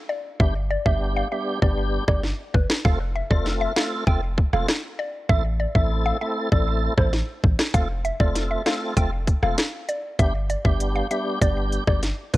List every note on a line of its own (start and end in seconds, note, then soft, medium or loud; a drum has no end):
0.09 0.20 D5 medium
0.39 0.77 G1 loud
0.39 0.53 G3 medium
0.39 0.54 B3 medium
0.39 0.54 D4 medium
0.39 0.54 G4 loud
0.39 0.51 E5 medium
0.39 kick loud
0.70 0.82 D5 medium
0.85 1.22 G1 loud
0.85 1.28 G3 medium
0.85 1.28 B3 medium
0.85 1.28 D4 medium
0.85 1.28 G4 medium
0.85 0.97 E5 medium
0.85 kick medium
1.16 1.28 F5 medium
1.31 1.59 G3 medium
1.31 1.60 B3 medium
1.31 1.60 D4 medium
1.31 1.60 G4 medium
1.31 1.43 E5 medium
1.62 1.99 G1 loud
1.62 2.04 G3 medium
1.62 2.04 B3 medium
1.62 2.04 D4 medium
1.62 2.04 G4 medium
1.62 1.73 D5 medium
1.62 kick medium
2.08 2.33 G1 medium
2.08 2.22 G3 medium
2.08 2.22 B3 medium
2.08 2.22 D4 medium
2.08 2.22 G4 medium
2.08 2.19 D5 medium
2.08 kick medium
2.08 cross-stick medium
2.23 snare medium
2.54 2.66 G1 medium
2.54 2.65 B4 medium
2.54 kick loud
2.70 cross-stick medium
2.70 snare loud
2.84 3.22 F1 loud
2.84 2.98 A3 medium
2.84 2.98 C4 medium
2.84 2.99 F4 medium
2.84 2.99 A4 loud
2.84 2.96 F5 loud
2.84 kick loud
3.15 3.27 E5 medium
3.30 3.67 F1 loud
3.30 3.72 A3 medium
3.30 3.73 C4 medium
3.30 3.73 F4 medium
3.30 3.73 A4 medium
3.30 3.42 D5 medium
3.30 kick medium
3.46 snare medium
3.61 3.72 E5 medium
3.76 4.04 A3 medium
3.76 4.04 C4 medium
3.76 4.05 F4 medium
3.76 4.05 A4 medium
3.76 3.88 F5 medium
3.76 cross-stick medium
3.76 snare loud
4.07 4.44 F1 loud
4.07 4.21 A3 medium
4.07 4.21 C4 medium
4.07 4.21 F4 medium
4.07 4.21 A4 loud
4.07 4.18 G5 medium
4.07 kick medium
4.38 kick medium
4.53 4.65 E1 medium
4.53 4.67 A3 medium
4.53 4.67 C4 medium
4.53 4.67 F4 medium
4.53 4.67 A4 medium
4.53 4.64 F5 medium
4.53 cross-stick medium
4.68 cross-stick medium
4.68 snare loud
4.99 5.10 D5 medium
5.29 5.66 A1 loud
5.29 5.43 A3 medium
5.29 5.43 C4 medium
5.29 5.44 E4 medium
5.29 5.44 A4 loud
5.29 5.41 E5 loud
5.29 kick loud
5.60 5.71 D5 medium
5.75 6.12 A1 loud
5.75 6.17 A3 medium
5.75 6.18 C4 medium
5.75 6.18 E4 medium
5.75 6.18 A4 medium
5.75 5.87 E5 medium
5.75 kick medium
6.06 6.17 F5 medium
6.21 6.49 A3 medium
6.21 6.49 C4 medium
6.21 6.50 E4 medium
6.21 6.50 A4 medium
6.21 6.33 E5 medium
6.52 6.89 A1 loud
6.52 6.94 A3 medium
6.52 6.94 C4 medium
6.52 6.94 E4 medium
6.52 6.94 A4 loud
6.52 6.63 D5 medium
6.52 kick medium
6.97 7.22 A1 medium
6.97 7.12 A3 medium
6.97 7.12 C4 medium
6.97 7.12 E4 medium
6.97 7.12 A4 medium
6.97 7.09 C5 medium
6.97 kick medium
6.97 cross-stick medium
7.13 snare medium
7.44 7.56 A1 medium
7.44 kick loud
7.59 cross-stick medium
7.59 snare loud
7.74 8.11 F1 loud
7.74 7.88 A3 medium
7.74 7.88 C4 medium
7.74 7.88 F4 medium
7.74 7.88 A4 loud
7.74 7.86 F5 loud
7.74 kick loud
7.74 closed hi-hat medium
8.05 8.16 E5 medium
8.05 closed hi-hat medium
8.20 8.57 F1 loud
8.20 8.62 A3 medium
8.20 8.62 C4 medium
8.20 8.62 F4 medium
8.20 8.63 A4 medium
8.20 8.32 D5 medium
8.20 kick medium
8.36 snare medium
8.36 closed hi-hat medium
8.51 8.62 E5 medium
8.66 8.94 A3 medium
8.66 8.94 C4 medium
8.66 8.94 F4 medium
8.66 8.94 A4 medium
8.66 8.78 F5 medium
8.66 cross-stick medium
8.66 snare loud
8.66 closed hi-hat medium
8.96 9.34 F1 loud
8.96 9.11 A3 medium
8.96 9.11 C4 medium
8.96 9.11 F4 medium
8.96 9.11 A4 loud
8.96 9.08 G5 medium
8.96 kick medium
8.96 closed hi-hat medium
9.27 kick medium
9.27 closed hi-hat soft
9.42 9.55 E1 medium
9.42 9.56 A3 medium
9.42 9.57 C4 medium
9.42 9.57 F4 medium
9.42 9.57 A4 medium
9.42 9.54 F5 medium
9.42 cross-stick medium
9.58 cross-stick medium
9.58 snare loud
9.58 closed hi-hat medium
9.89 10.00 D5 medium
9.89 closed hi-hat medium
10.19 10.56 G1 loud
10.19 10.33 G3 medium
10.19 10.33 B3 medium
10.19 10.33 D4 medium
10.19 10.33 G4 loud
10.19 10.31 E5 loud
10.19 kick loud
10.19 closed hi-hat medium
10.50 10.61 D5 medium
10.50 closed hi-hat medium
10.65 11.02 G1 loud
10.65 11.07 G3 medium
10.65 11.07 B3 medium
10.65 11.07 D4 medium
10.65 11.07 G4 medium
10.65 10.76 E5 medium
10.65 kick medium
10.80 closed hi-hat medium
10.96 11.07 F5 medium
11.11 11.39 G3 medium
11.11 11.39 B3 medium
11.11 11.39 D4 medium
11.11 11.39 G4 medium
11.11 11.22 E5 medium
11.11 closed hi-hat medium
11.41 11.79 G1 loud
11.41 11.84 G3 medium
11.41 11.84 B3 medium
11.41 11.84 D4 medium
11.41 11.84 G4 medium
11.41 11.53 D5 medium
11.41 kick medium
11.41 closed hi-hat medium
11.72 closed hi-hat medium
11.87 12.12 G1 medium
11.87 12.01 G3 medium
11.87 12.01 B3 medium
11.87 12.02 D4 medium
11.87 12.02 G4 medium
11.87 11.99 D5 medium
11.87 kick medium
11.87 cross-stick medium
12.03 snare medium
12.03 closed hi-hat medium
12.33 12.37 G1 medium
12.33 12.37 B4 medium
12.33 kick medium
12.33 closed hi-hat medium